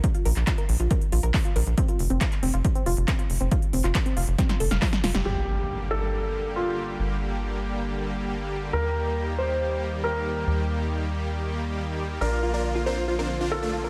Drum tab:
HH |xxoxxxoxxxoxoxox|xxoxxxoxxxoxxxox|xxoxxxoxxxoxoxox|----------------|
CP |---xx-------x---|----xx------x---|---xx-------x---|----------------|
SD |----------------|----------------|--------oo-ooooo|----------------|
BD |o---o---o---o---|o---o---o---o---|o---o---o---o---|----------------|

HH |----------------|----------------|----------------|----------------|
CP |----------------|----------------|----------------|----------------|
SD |----------------|----------------|----------------|----------------|
BD |----------------|----------------|----------------|----------------|